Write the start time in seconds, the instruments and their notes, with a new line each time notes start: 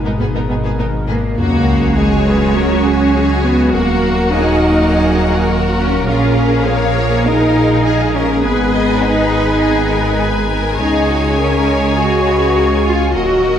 Already playing: detuned saw bass G#1, trombone section B2 G#3, analog synth pad B2 G#3 D#4 A#4, french horn section A#3 D#4
0.05 cello section G#2, viola section B3, violin section D#4 A#4
0.20 double bass section G#1, cello section G#2, viola section B3, violin section G#4 B4
0.35 cello section G#2, viola section B3, violin section D#4 A#4
0.49 double bass section G#1, cello section G#2, violin section B3 G#4, viola section B3
0.64 cello section G#2, viola section B3, violin section G#4 B4
0.78 double bass section G#1, cello section G#2, viola section B3, violin section D#4 A#4
1.08 double bass section G#1, cello section G#2 A#3, french horn section A#3, viola section B3, violin section G#4 B4
1.37 double bass section C#2, detuned saw bass C#2, trombone section F#3 C#4, analog synth pad G#3 C#4 F#4 G#4, cello section A#3, french horn section A#3, viola section F#4 G#4, violin section F#4 C#5, sub drop
1.97 cello section G#3, french horn section G#3, violin section G#4
2.26 violin section B4
2.55 french horn section C#4, cello section C#4, violin section A#4
2.85 violin section G#4
3.44 cello section B3, french horn section B3
3.73 detuned saw bass D#1, double bass section D#2, analog synth pad F#3 A#3 A#4, trombone section A#3, french horn section A#3, cello section A#3, violin section F#4 F#5, viola section A#4
4.32 french horn section D#4, cello section D#4, violin section G#4
4.62 violin section A#4
4.91 violin section G#4
5.50 violin section F#4
5.79 french horn section C#4, cello section C#4
6.08 double bass section A#1, detuned saw bass A#1, analog synth pad F3 G#4, trombone section F3, french horn section C#4, cello section C#4, violin section F4 F5, viola section G#4
6.39 violin section G#4
6.67 cello section A#3, french horn section A#3, violin section C#5
7.26 trombone section G#3, cello section D#4, french horn section D#4, violin section A#4
7.85 violin section G#4
8.14 french horn section C#4, cello section C#4, violin section A#4
8.44 double bass section G#1, detuned saw bass G#1, trombone section D#3, analog synth pad G#3 B3 A#5, french horn section B3, cello section B3, viola section B4, violin section B4 G#5
8.74 violin section D#5
9.03 french horn section D#4, cello section D#4, violin section B4
9.61 violin section G#4
9.91 violin section A#4
10.21 violin section B4
10.50 violin section A#4
10.79 detuned saw bass C#2, double bass section C#2, trombone section C#3 G#3, analog synth pad C#4 G#4 C#5, cello section D#4, french horn section D#4, violin section G#4, viola section G#4 C#5
11.09 violin section F#4
11.38 cello section C#4, french horn section C#4, violin section A#4
11.97 cello section F#4, french horn section F#4, violin section G#4
12.27 violin section B4
12.56 violin section A#4
12.85 cello section F4, french horn section F4, violin section G#4
13.14 detuned saw bass D#1, double bass section D#2, trombone section A#2 A#3, analog synth pad D#3 A#3 A#4 D#5, viola section F#3 A#4, violin section F#4 D#5, cello section F#4, french horn section F#4